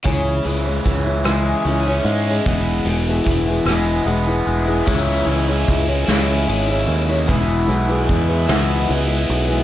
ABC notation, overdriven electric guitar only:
X:1
M:6/8
L:1/8
Q:3/8=50
K:C#m
V:1 name="Overdriven electric guitar" clef=bass
C, E, E, G, C G, | E,, B,, E, G, B, G, | [C,E,G,CE]3 [C,E,G,CE]3 | [E,,B,,E,G,B,E]3 [E,,B,,E,G,B,E]3 |]